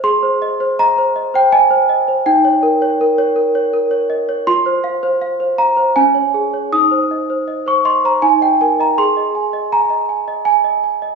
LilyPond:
\new Staff \with { instrumentName = "Celesta" } { \time 3/4 \key aes \major \tempo 4 = 81 << { c'''4 bes''8. g''16 aes''4 | g''2. | c'''4. bes''8 aes''4 | ees'''4~ ees'''16 des'''16 c'''16 bes''16 aes''16 g''16 aes''16 bes''16 |
c'''4 bes''4 aes''4 | } \\ { aes'16 c''16 ees''16 c''16 ees''16 c''16 ees''16 c''16 ees''16 c''16 ees''16 c''16 | ees'16 des''16 bes'16 des''16 bes'16 des''16 bes'16 des''16 bes'16 des''16 ees''16 des''16 | f'16 c''16 f''16 c''16 f''16 c''16 f''16 c''16 des'16 des''16 aes'16 des''16 | ees'16 c''16 ees''16 c''16 ees''16 c''16 ees''16 c''16 ees'16 ees''16 bes'16 ees''16 |
aes'16 ees''16 aes''16 ees''16 aes''16 ees''16 aes''16 ees''8 ees''16 aes''16 ees''16 | } >> }